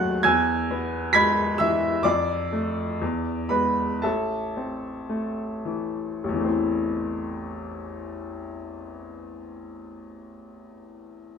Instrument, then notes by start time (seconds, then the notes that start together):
upright piano
Already playing: D#2 F#3 A3 C4 F#5 G#5 F#6 G#6
0.23 E2 G#5 E6 G#6
0.71 B3
1.13 G#3 B5 G#6 B6
1.58 E3 E5 E6
2.03 F2 D5 D6
2.52 A3
3.02 E2
3.49 G#3 B3 B4 B5
4.02 A1 A4 E5 A5
4.57 C4
5.09 A3
5.65 E3
6.24 A1
6.29 E2
6.34 E3
6.39 A3
6.44 C4
6.48 E4